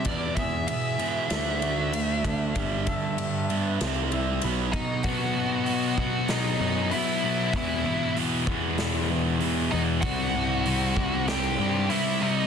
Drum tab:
RD |xxxxxxxx|xxxxxxxx|--------|--------|
HH |--------|--------|o-o-o-o-|o-o-o-o-|
SD |----o---|----o---|----o---|----o---|
BD |oo-----o|oo-----o|o--o----|o--o----|

RD |--------|
HH |o-o-o-o-|
SD |----o---|
BD |o--o----|